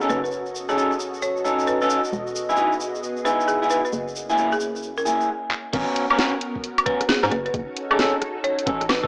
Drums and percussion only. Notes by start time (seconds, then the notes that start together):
0.01 shaker
0.09 shaker
0.25 shaker
0.31 shaker
0.46 shaker
0.55 shaker
0.69 shaker
0.78 shaker
0.92 shaker
1.00 shaker
1.14 shaker
1.22 shaker
1.37 shaker
1.45 shaker
1.59 shaker
1.67 shaker
1.81 shaker
1.90 shaker
2.04 shaker
2.13 shaker
2.27 shaker
2.36 shaker
2.49 shaker
2.56 shaker
2.72 shaker
2.80 shaker
2.95 shaker
3.03 shaker
3.17 shaker
3.26 shaker
3.40 shaker
3.48 shaker
3.63 shaker
3.70 shaker
3.85 shaker
3.92 shaker
4.08 shaker
4.16 shaker
4.30 shaker
4.38 shaker
4.52 shaker
4.60 shaker
4.76 shaker
4.83 shaker
4.97 shaker
5.06 shaker
5.21 shaker
5.51 clap
5.73 kick, closed hi-hat, crash
5.96 closed hi-hat
6.10 high woodblock
6.19 snare, closed hi-hat
6.41 closed hi-hat
6.56 kick
6.64 closed hi-hat
6.78 closed hi-hat, high woodblock
6.86 kick, closed hi-hat
7.01 cross-stick, closed hi-hat
7.09 snare, closed hi-hat
7.23 snare
7.31 cross-stick, closed hi-hat
7.46 closed hi-hat
7.54 kick, closed hi-hat
7.77 closed hi-hat
7.91 high woodblock
7.99 snare, closed hi-hat
8.22 cross-stick, closed hi-hat
8.44 closed hi-hat
8.59 closed hi-hat
8.67 kick, closed hi-hat
8.81 cross-stick, closed hi-hat
8.89 snare, closed hi-hat, high woodblock
9.04 kick